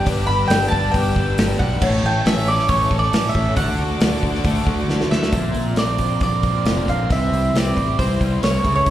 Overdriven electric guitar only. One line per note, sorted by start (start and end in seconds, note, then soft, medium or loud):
0.00 0.70 G3 medium
0.00 0.28 B3 medium
0.00 0.49 D4 medium
0.00 0.27 G4 medium
0.06 1.16 G2 medium
0.29 1.15 G4 medium
0.51 1.37 D4 medium
0.72 1.59 G3 medium
0.94 1.82 B3 medium
1.16 1.82 G4 medium
1.38 1.82 D4 medium
1.60 1.82 G3 medium
1.82 2.91 A2 medium
2.04 2.89 A4 medium
2.26 3.11 C#4 medium
2.48 3.33 E3 medium
2.69 3.57 A3 medium
2.90 3.56 A4 medium
3.13 3.57 C#4 medium
3.34 3.56 E3 medium
3.56 4.22 D3 medium
3.78 4.66 F#4 medium
4.01 4.88 D4 medium
4.23 5.10 D3 medium
4.45 5.32 A3 medium
4.67 5.33 F#4 medium
4.89 5.33 D4 medium
5.11 5.33 D3 medium
5.34 6.43 A#2 medium
5.77 6.22 C4 medium
6.00 7.10 F4 medium
6.23 6.88 C4 medium
6.44 7.10 A#3 medium
6.67 7.10 D3 medium
6.89 7.10 C4 medium
7.11 8.20 C3 medium
7.55 7.98 C4 medium
7.77 8.64 E4 medium
7.99 8.65 C4 medium
8.21 8.64 G3 medium
8.43 8.64 E3 medium
8.65 8.85 C#3 medium
8.87 8.90 C#3 medium